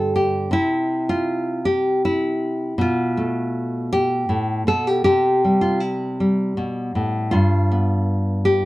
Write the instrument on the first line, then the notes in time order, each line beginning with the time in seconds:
nylon-string guitar
Already playing: G2 D3 B3 D4 A4
0.16 G4
0.51 C3 E4
1.09 F4
1.65 G4
2.05 E4
2.78 B2 F4
3.17 A3
3.93 G4
4.29 A2
4.67 B2 A4
4.87 G4
5.04 C3 G4
5.44 G3
5.61 F4
5.80 E4
6.20 G3
6.57 B2
6.95 A2
7.31 G2 F4
7.71 B3
8.45 G4